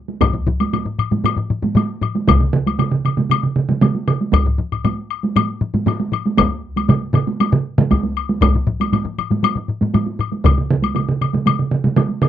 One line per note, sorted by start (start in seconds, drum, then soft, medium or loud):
0.09 taiko high soft
0.21 taiko medium
0.21 taiko low-mid medium
0.21 taiko high medium
0.21 high woodblock medium
0.33 taiko low-mid medium
0.47 taiko low-mid loud
0.60 taiko high medium
0.60 high woodblock soft
0.73 taiko low-mid medium
0.73 taiko high medium
0.73 high woodblock soft
0.85 taiko low-mid medium
0.98 taiko low-mid medium
0.98 high woodblock soft
1.11 taiko low-mid medium
1.11 taiko high medium
1.24 taiko low-mid medium
1.24 taiko high medium
1.24 high woodblock medium
1.36 taiko low-mid medium
1.50 taiko low-mid medium
1.63 taiko low-mid medium
1.63 taiko high medium
1.75 taiko low-mid medium
1.75 taiko high medium
1.75 high woodblock soft
2.01 taiko low-mid medium
2.01 high woodblock soft
2.15 taiko high medium
2.27 taiko medium
2.27 taiko mid medium
2.27 taiko high medium
2.27 high woodblock medium
2.40 taiko mid medium
2.53 taiko mid medium
2.66 taiko high medium
2.66 high woodblock soft
2.79 taiko mid medium
2.79 taiko high medium
2.79 high woodblock soft
2.91 taiko mid medium
3.05 taiko mid medium
3.05 high woodblock soft
3.17 taiko mid medium
3.17 taiko high medium
3.30 taiko mid medium
3.30 taiko high medium
3.30 high woodblock medium
3.43 taiko mid medium
3.56 taiko mid medium
3.69 taiko mid medium
3.69 taiko high soft
3.81 taiko mid loud
3.81 taiko high medium
3.81 high woodblock soft
3.95 taiko high soft
4.08 taiko mid medium
4.08 high woodblock soft
4.21 taiko high soft
4.33 taiko loud
4.33 taiko low-mid medium
4.33 taiko high medium
4.33 high woodblock medium
4.46 taiko low-mid medium
4.59 taiko low-mid medium
4.72 taiko low-mid medium
4.72 high woodblock soft
4.85 taiko low-mid loud
4.85 taiko high medium
4.85 high woodblock soft
5.11 high woodblock soft
5.23 taiko high medium
5.36 taiko low-mid loud
5.36 taiko high medium
5.36 high woodblock medium
5.61 taiko low-mid medium
5.74 taiko low-mid medium
5.74 taiko high medium
5.86 taiko low-mid medium
5.86 taiko high medium
5.86 high woodblock soft
6.00 taiko high soft
6.12 taiko low-mid medium
6.12 high woodblock soft
6.26 taiko high medium
6.38 taiko medium
6.38 taiko high medium
6.38 high woodblock medium
6.76 taiko high medium
6.76 high woodblock soft
6.88 taiko low-mid medium
6.88 taiko mid medium
6.88 taiko high medium
6.88 high woodblock soft
7.14 taiko low-mid medium
7.14 taiko mid loud
7.14 high woodblock soft
7.27 taiko high medium
7.40 taiko high medium
7.40 high woodblock medium
7.53 taiko low-mid medium
7.53 taiko mid medium
7.78 taiko low-mid medium
7.78 taiko mid loud
7.78 taiko high medium
7.91 taiko medium
7.91 taiko high medium
7.91 high woodblock soft
8.04 taiko high medium
8.17 high woodblock soft
8.29 taiko high medium
8.42 taiko loud
8.42 taiko low-mid medium
8.42 taiko high medium
8.42 high woodblock medium
8.55 taiko low-mid medium
8.67 taiko low-mid medium
8.80 taiko high medium
8.80 high woodblock soft
8.93 taiko low-mid medium
8.93 taiko high medium
8.93 high woodblock soft
9.05 taiko low-mid medium
9.18 taiko low-mid medium
9.18 high woodblock soft
9.31 taiko low-mid medium
9.31 taiko high medium
9.43 taiko low-mid medium
9.43 taiko high medium
9.43 high woodblock medium
9.55 taiko low-mid medium
9.68 taiko low-mid medium
9.81 taiko low-mid medium
9.81 taiko high medium
9.94 taiko low-mid medium
9.94 taiko high medium
9.94 high woodblock soft
10.06 taiko high soft
10.19 taiko low-mid medium
10.19 high woodblock soft
10.32 taiko high soft
10.44 taiko loud
10.44 taiko mid medium
10.44 taiko high medium
10.44 high woodblock medium
10.58 taiko mid medium
10.71 taiko mid loud
10.82 taiko high soft
10.82 high woodblock soft
10.95 taiko mid medium
10.95 taiko high medium
10.95 high woodblock soft
11.09 taiko mid medium
11.21 taiko mid medium
11.21 high woodblock soft
11.33 taiko mid medium
11.33 taiko high soft
11.46 taiko mid medium
11.46 taiko high medium
11.46 high woodblock medium
11.59 taiko mid medium
11.71 taiko mid medium
11.84 taiko mid medium
11.84 taiko high medium
11.96 taiko mid loud
11.96 taiko high medium
11.96 high woodblock soft
12.09 taiko high soft
12.22 taiko mid loud
12.22 high woodblock soft